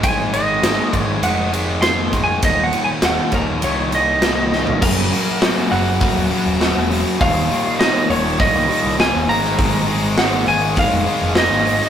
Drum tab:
CC |----------------|----------------|x---------------|----------------|
RD |x-x-x-x-x-x-x-x-|x-x-x-x-x-x-x---|----------------|----------------|
HH |----------------|----------------|--o-o-o-o-o-o-o-|o-o-o-o-o-o-o-o-|
SD |----o-------o---|----o-------o-o-|----o-------o---|----o-------o--o|
FT |----------------|---------------o|----------------|----------------|
BD |o-----o-------o-|o-----o---------|o-------o-------|o-------o-------|

CC |----------------|
RD |----------------|
HH |o-o-o-o-o-o-o-o-|
SD |----o-------oo-o|
FT |----------------|
BD |o-------o-------|